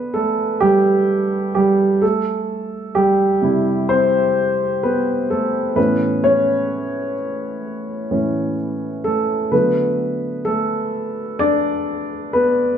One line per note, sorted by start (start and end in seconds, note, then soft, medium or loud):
0.00 2.04 D3 soft
0.00 2.04 B3 medium
0.00 2.04 D4 soft
0.00 2.04 B4 medium
0.14 0.59 A3 medium
0.14 0.62 A4 medium
0.60 1.51 G3 soft
0.60 1.53 G4 medium
1.55 1.99 G3 soft
1.55 1.99 G4 medium
2.02 2.92 A3 soft
2.02 2.92 A4 medium
2.95 3.41 G3 soft
2.95 3.85 G4 medium
3.42 4.05 C3 soft
3.42 4.05 G3 soft
3.42 4.05 E4 soft
3.89 4.79 C4 soft
3.89 4.79 C5 medium
4.83 5.27 B3 medium
4.83 5.27 B4 medium
5.30 5.74 A3 soft
5.30 5.74 A4 medium
5.75 7.13 A2 soft
5.75 7.13 E3 soft
5.75 6.21 B3 soft
5.75 6.23 C#4 soft
5.75 6.25 B4 medium
6.24 7.14 C#4 soft
6.24 7.14 C#5 medium
8.11 8.54 A2 soft
8.11 8.54 E3 soft
8.11 8.54 C#4 soft
9.04 9.49 A3 soft
9.04 9.53 A4 medium
9.52 10.88 D3 soft
9.52 10.89 F#3 soft
9.52 10.45 A3 soft
9.52 10.42 B3 soft
9.52 10.42 B4 medium
10.45 11.36 A3 medium
10.45 11.42 A4 medium
11.39 12.30 D4 medium
11.39 12.36 D5 medium
12.33 12.78 B3 medium
12.33 12.78 B4 medium